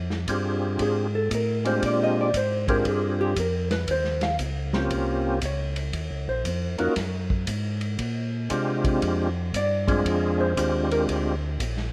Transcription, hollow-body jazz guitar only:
0.82 G#4
1.15 A4
1.35 A#4
1.67 C5
1.86 D5
2.03 D#5
2.21 D5
2.37 C5
2.70 A#4
2.89 G#4
3.21 G4
3.40 A#4
3.72 B4
3.91 C5
4.23 F5
5.46 C#5
6.29 C5
6.80 A#4
9.56 D5
10.41 C5
10.92 A#4

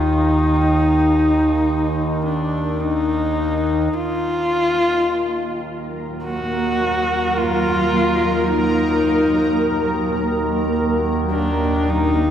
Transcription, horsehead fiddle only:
Already playing: D#4
2.26 D4
2.80 D#4
3.94 F4
6.23 F#4
7.37 F4
8.47 D#4
11.31 D4
11.90 D#4

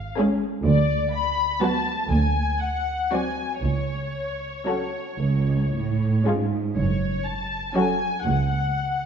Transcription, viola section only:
0.19 G#3 C#4
1.62 F#3 B3
3.12 F#3 C4
4.67 F#3 C#4
6.26 G#3 C#4
7.75 F#3 C#4

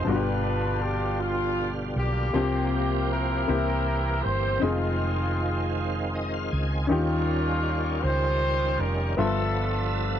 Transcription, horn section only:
0.07 D4 F4 B4
0.82 G4
1.20 F4
1.96 A#3 G4
3.10 E4 G4 A#4
4.23 C5
4.63 G#3 C4 F4
6.91 A#3 C#4 F4
8.02 F4 G4 C5
8.79 A#4
9.19 D4 F4 A4

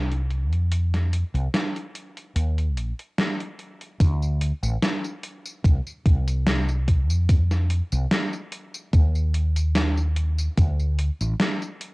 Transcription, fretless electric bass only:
Already playing: C2
0.52 F2
1.34 C2
2.36 D#2
2.77 A#1
4.00 D2
4.63 A1
5.64 C2
6.06 C2
7.10 F2
7.92 C2
8.93 D#2
10.58 D2
11.21 A1

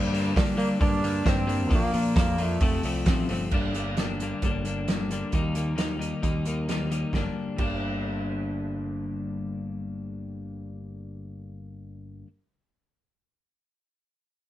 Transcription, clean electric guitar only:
Already playing: G2 D3 G3 A#3 D4
0.12 G2 D3 G3 A#3 D4
0.35 G2 D3 G3 A#3 D4
0.56 G2 D3 G3 A#3 D4
0.79 G2 D3 G3 A#3 D4
1.03 G2 D3 G3 A#3 D4
1.24 G2 D3 G3 A#3 D4
1.46 G2 D3 G3 A#3 D4
1.69 A#2 F3 A#3 D4
1.92 A#2 F3 A#3 D4
2.15 A#2 F3 A#3 D4
2.37 A#2 F3 A#3 D4
2.61 F2 C3 F3 A3 C4
2.83 F2 C3 F3 A3 C4
3.06 F2 C3 F3 A3 C4
3.29 F2 C3 F3 A3 C4
3.53 G2 D3 G3 A#3 D4
3.74 G2 D3 G3 A#3 D4
3.97 G2 D3 G3 A#3 D4
4.21 G2 D3 G3 A#3 D4
4.43 G2 D3 G3 A#3 D4
4.65 G2 D3 G3 A#3 D4
4.88 G2 D3 G3 A#3 D4
5.11 G2 D3 G3 A#3 D4
5.33 D#3 G3 A#3 D#4
5.55 D#3 G3 A#3 D#4
5.76 D#3 G3 A#3 D#4
5.99 D#3 G3 A#3 D#4
6.22 D#3 G3 A#3 D#4
6.46 D#3 G3 A#3 D#4
6.68 D#3 G3 A#3 D#4
6.91 D#3 G3 A#3 D#4
7.13 G2 D3 G3 A#3
7.17 D4
7.57 G2 D3 G3 A#3
7.61 D4

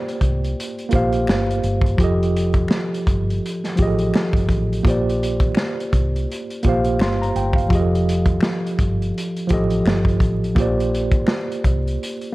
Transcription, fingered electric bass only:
0.22 C2
0.93 A#1
1.28 G1
1.64 G1
1.99 F1
3.07 G1
3.79 A1
4.34 G1
4.49 A1
4.85 A#1
5.93 C2
6.65 A#1
6.99 G1
7.36 G1
7.71 F1
8.79 G1
9.51 A1
9.85 G1
10.21 A1
10.57 A#1
11.65 C2

